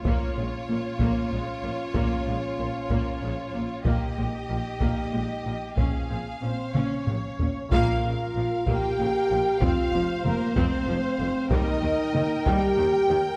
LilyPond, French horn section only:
\new Staff \with { instrumentName = "French horn section" } { \time 6/8 \key bes \dorian \tempo 4. = 63 <f des'>2.~ | <f des'>2. | <ees' g'>2. | <des f>4 c'8 des'4. |
f'4. g'4. | f'4 bes8 c'4. | ees'4. g'4. | }